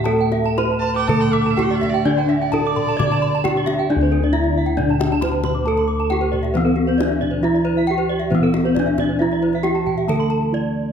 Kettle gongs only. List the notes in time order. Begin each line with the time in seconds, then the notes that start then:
Already playing: A2
0.06 A4
0.58 E4
1.09 D3
1.58 E4
2.06 D4
2.54 E4
3.00 D3
3.47 E4
3.91 D4
3.96 D2
4.36 E4
5.24 E4
5.67 A4
6.11 E4
6.55 E3
7.00 E4
7.43 E4
7.89 E4
8.32 E3
8.76 E4
9.21 E4
9.66 E4
10.09 D3
10.53 E4